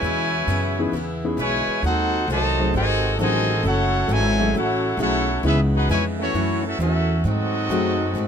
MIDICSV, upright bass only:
0, 0, Header, 1, 3, 480
1, 0, Start_track
1, 0, Key_signature, 4, "minor"
1, 0, Tempo, 450789
1, 32, Time_signature, 4, 2, 24, 8
1, 8812, End_track
2, 0, Start_track
2, 0, Title_t, "Upright bass"
2, 0, Program_c, 0, 32
2, 16, Note_on_c, 0, 40, 97
2, 490, Note_off_c, 0, 40, 0
2, 502, Note_on_c, 0, 42, 96
2, 973, Note_off_c, 0, 42, 0
2, 977, Note_on_c, 0, 40, 80
2, 1450, Note_off_c, 0, 40, 0
2, 1459, Note_on_c, 0, 35, 91
2, 1762, Note_off_c, 0, 35, 0
2, 1943, Note_on_c, 0, 39, 96
2, 2414, Note_off_c, 0, 39, 0
2, 2423, Note_on_c, 0, 36, 99
2, 2894, Note_off_c, 0, 36, 0
2, 2907, Note_on_c, 0, 32, 81
2, 3376, Note_off_c, 0, 32, 0
2, 3393, Note_on_c, 0, 33, 102
2, 3859, Note_off_c, 0, 33, 0
2, 3867, Note_on_c, 0, 30, 99
2, 4335, Note_off_c, 0, 30, 0
2, 4349, Note_on_c, 0, 32, 100
2, 4816, Note_off_c, 0, 32, 0
2, 4824, Note_on_c, 0, 33, 78
2, 5289, Note_off_c, 0, 33, 0
2, 5295, Note_on_c, 0, 35, 105
2, 5769, Note_off_c, 0, 35, 0
2, 5785, Note_on_c, 0, 37, 102
2, 6254, Note_off_c, 0, 37, 0
2, 6266, Note_on_c, 0, 41, 93
2, 6734, Note_off_c, 0, 41, 0
2, 6751, Note_on_c, 0, 42, 84
2, 7216, Note_off_c, 0, 42, 0
2, 7226, Note_on_c, 0, 40, 103
2, 7693, Note_off_c, 0, 40, 0
2, 7711, Note_on_c, 0, 44, 87
2, 8176, Note_off_c, 0, 44, 0
2, 8189, Note_on_c, 0, 42, 95
2, 8654, Note_off_c, 0, 42, 0
2, 8661, Note_on_c, 0, 44, 86
2, 8812, Note_off_c, 0, 44, 0
2, 8812, End_track
3, 0, Start_track
3, 0, Title_t, "Muted upright bass strokes"
3, 1786, Note_on_c, 9, 29, 47
3, 1892, Note_off_c, 9, 29, 0
3, 8812, End_track
0, 0, End_of_file